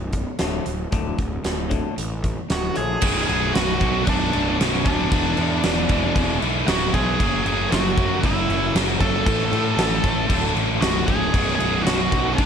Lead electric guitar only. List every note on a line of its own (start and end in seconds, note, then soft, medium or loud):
2.52 2.76 F#4 medium
2.52 2.78 F#5 medium
2.77 3.26 G#4 medium
2.77 3.25 G#5 medium
3.27 3.52 G#4 medium
3.27 3.52 G#5 loud
3.54 4.03 F#4 medium
3.54 4.08 F#5 loud
4.08 4.56 D4 medium
4.08 4.57 D5 medium
4.85 6.37 D4 medium
4.85 5.83 D5 loud
5.83 6.37 C#5 loud
6.67 6.91 F#4 medium
6.67 6.91 F#5 loud
6.94 7.42 G#4 medium
6.94 7.45 G#5 loud
7.46 7.70 G#4 medium
7.46 7.72 G#5 loud
7.70 8.19 F#4 medium
7.70 8.24 F#5 medium
8.24 8.72 E4 medium
8.24 8.72 E5 loud
9.00 10.52 A4 medium
9.00 10.52 A5 loud
10.81 11.06 F#4 medium
10.81 11.08 F#5 loud
11.06 11.56 G#4 medium
11.06 11.54 G#5 loud
11.55 11.83 G#4 medium
11.55 11.81 G#5 loud
11.82 12.37 F#5 medium
11.86 12.34 F#4 medium
12.33 12.46 D4 medium
12.33 12.46 D5 medium